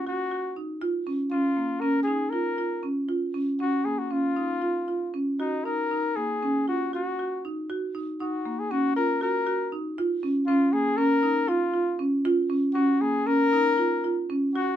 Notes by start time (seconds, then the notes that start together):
0.07 F#4
0.31 F#4
0.56 D#4
0.81 F4
1.07 C#4
1.31 C#4 F4
1.57 A#3
1.81 C#4 A#4
2.03 G#4
2.07 D#4
2.30 F4 A#4
2.58 F4
2.83 C#4
3.09 F4
3.34 C#4
3.60 C#4 F#4
3.85 A#3 G#4
3.98 F#4
4.11 C#4 F4
4.36 D#4
4.62 F4
4.88 F4
5.14 C#4
5.40 D#4 F#4
5.65 D#4 A#4
5.91 D#4
6.16 A#3 G#4
6.43 C#4
6.68 F4 F#4
6.93 F#4
7.19 F#4
7.45 D#4
7.70 F#4
7.95 D#4
8.20 D#4 F#4
8.45 A#3
8.60 G#4
8.71 C#4 F#4
8.96 F4 A#4
9.21 F#4 A#4
9.47 F#4
9.72 D#4
9.98 F4
10.23 C#4
10.47 C#4 F4
10.73 A#3 G#4
10.97 C#4 A#4
11.23 D#4
11.48 F4
11.74 F4
11.99 C#4
12.25 F4
12.50 C#4
12.74 C#4 F#4
13.01 A#3 G#4
13.27 C#4 A#4
13.53 D#4
13.78 F4
14.04 F4
14.30 C#4
14.53 F#4